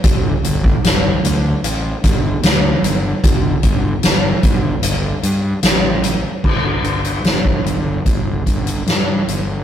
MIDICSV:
0, 0, Header, 1, 3, 480
1, 0, Start_track
1, 0, Tempo, 803213
1, 26, Time_signature, 4, 2, 24, 8
1, 5760, End_track
2, 0, Start_track
2, 0, Title_t, "Fingered electric bass"
2, 0, Program_c, 0, 33
2, 20, Note_on_c, 0, 31, 96
2, 197, Note_off_c, 0, 31, 0
2, 259, Note_on_c, 0, 31, 85
2, 436, Note_off_c, 0, 31, 0
2, 501, Note_on_c, 0, 31, 93
2, 677, Note_off_c, 0, 31, 0
2, 736, Note_on_c, 0, 38, 90
2, 913, Note_off_c, 0, 38, 0
2, 972, Note_on_c, 0, 33, 88
2, 1150, Note_off_c, 0, 33, 0
2, 1217, Note_on_c, 0, 31, 91
2, 1393, Note_off_c, 0, 31, 0
2, 1449, Note_on_c, 0, 38, 85
2, 1627, Note_off_c, 0, 38, 0
2, 1687, Note_on_c, 0, 31, 95
2, 1866, Note_off_c, 0, 31, 0
2, 1931, Note_on_c, 0, 31, 96
2, 2108, Note_off_c, 0, 31, 0
2, 2169, Note_on_c, 0, 31, 82
2, 2346, Note_off_c, 0, 31, 0
2, 2414, Note_on_c, 0, 31, 87
2, 2589, Note_off_c, 0, 31, 0
2, 2647, Note_on_c, 0, 31, 80
2, 2825, Note_off_c, 0, 31, 0
2, 2881, Note_on_c, 0, 31, 86
2, 3061, Note_off_c, 0, 31, 0
2, 3127, Note_on_c, 0, 43, 85
2, 3304, Note_off_c, 0, 43, 0
2, 3362, Note_on_c, 0, 33, 87
2, 3718, Note_off_c, 0, 33, 0
2, 3852, Note_on_c, 0, 31, 89
2, 4058, Note_off_c, 0, 31, 0
2, 4076, Note_on_c, 0, 31, 73
2, 4290, Note_off_c, 0, 31, 0
2, 4324, Note_on_c, 0, 31, 83
2, 4535, Note_off_c, 0, 31, 0
2, 4564, Note_on_c, 0, 31, 83
2, 4776, Note_off_c, 0, 31, 0
2, 4813, Note_on_c, 0, 31, 88
2, 5022, Note_off_c, 0, 31, 0
2, 5057, Note_on_c, 0, 31, 80
2, 5265, Note_off_c, 0, 31, 0
2, 5298, Note_on_c, 0, 43, 78
2, 5508, Note_off_c, 0, 43, 0
2, 5541, Note_on_c, 0, 31, 84
2, 5751, Note_off_c, 0, 31, 0
2, 5760, End_track
3, 0, Start_track
3, 0, Title_t, "Drums"
3, 22, Note_on_c, 9, 42, 92
3, 24, Note_on_c, 9, 36, 123
3, 82, Note_off_c, 9, 42, 0
3, 84, Note_off_c, 9, 36, 0
3, 265, Note_on_c, 9, 42, 69
3, 325, Note_off_c, 9, 42, 0
3, 384, Note_on_c, 9, 36, 92
3, 444, Note_off_c, 9, 36, 0
3, 504, Note_on_c, 9, 42, 85
3, 509, Note_on_c, 9, 38, 108
3, 564, Note_off_c, 9, 42, 0
3, 569, Note_off_c, 9, 38, 0
3, 744, Note_on_c, 9, 42, 68
3, 804, Note_off_c, 9, 42, 0
3, 980, Note_on_c, 9, 42, 95
3, 1040, Note_off_c, 9, 42, 0
3, 1217, Note_on_c, 9, 42, 71
3, 1219, Note_on_c, 9, 36, 84
3, 1277, Note_off_c, 9, 42, 0
3, 1279, Note_off_c, 9, 36, 0
3, 1454, Note_on_c, 9, 42, 91
3, 1459, Note_on_c, 9, 38, 110
3, 1514, Note_off_c, 9, 42, 0
3, 1519, Note_off_c, 9, 38, 0
3, 1698, Note_on_c, 9, 42, 78
3, 1757, Note_off_c, 9, 42, 0
3, 1934, Note_on_c, 9, 36, 117
3, 1935, Note_on_c, 9, 42, 101
3, 1994, Note_off_c, 9, 36, 0
3, 1995, Note_off_c, 9, 42, 0
3, 2169, Note_on_c, 9, 42, 74
3, 2172, Note_on_c, 9, 36, 82
3, 2229, Note_off_c, 9, 42, 0
3, 2232, Note_off_c, 9, 36, 0
3, 2408, Note_on_c, 9, 42, 97
3, 2413, Note_on_c, 9, 38, 106
3, 2468, Note_off_c, 9, 42, 0
3, 2472, Note_off_c, 9, 38, 0
3, 2648, Note_on_c, 9, 42, 78
3, 2649, Note_on_c, 9, 36, 94
3, 2707, Note_off_c, 9, 42, 0
3, 2709, Note_off_c, 9, 36, 0
3, 2885, Note_on_c, 9, 42, 104
3, 2944, Note_off_c, 9, 42, 0
3, 3127, Note_on_c, 9, 42, 67
3, 3187, Note_off_c, 9, 42, 0
3, 3363, Note_on_c, 9, 42, 91
3, 3367, Note_on_c, 9, 38, 110
3, 3422, Note_off_c, 9, 42, 0
3, 3427, Note_off_c, 9, 38, 0
3, 3606, Note_on_c, 9, 42, 74
3, 3666, Note_off_c, 9, 42, 0
3, 3849, Note_on_c, 9, 36, 100
3, 3852, Note_on_c, 9, 49, 86
3, 3909, Note_off_c, 9, 36, 0
3, 3912, Note_off_c, 9, 49, 0
3, 4090, Note_on_c, 9, 42, 51
3, 4150, Note_off_c, 9, 42, 0
3, 4210, Note_on_c, 9, 42, 61
3, 4270, Note_off_c, 9, 42, 0
3, 4329, Note_on_c, 9, 42, 54
3, 4334, Note_on_c, 9, 38, 105
3, 4389, Note_off_c, 9, 42, 0
3, 4394, Note_off_c, 9, 38, 0
3, 4452, Note_on_c, 9, 36, 88
3, 4512, Note_off_c, 9, 36, 0
3, 4580, Note_on_c, 9, 42, 57
3, 4640, Note_off_c, 9, 42, 0
3, 4816, Note_on_c, 9, 36, 101
3, 4816, Note_on_c, 9, 42, 62
3, 4875, Note_off_c, 9, 42, 0
3, 4876, Note_off_c, 9, 36, 0
3, 5058, Note_on_c, 9, 36, 71
3, 5059, Note_on_c, 9, 42, 58
3, 5118, Note_off_c, 9, 36, 0
3, 5119, Note_off_c, 9, 42, 0
3, 5180, Note_on_c, 9, 42, 60
3, 5239, Note_off_c, 9, 42, 0
3, 5303, Note_on_c, 9, 42, 58
3, 5308, Note_on_c, 9, 38, 90
3, 5363, Note_off_c, 9, 42, 0
3, 5368, Note_off_c, 9, 38, 0
3, 5548, Note_on_c, 9, 42, 61
3, 5608, Note_off_c, 9, 42, 0
3, 5760, End_track
0, 0, End_of_file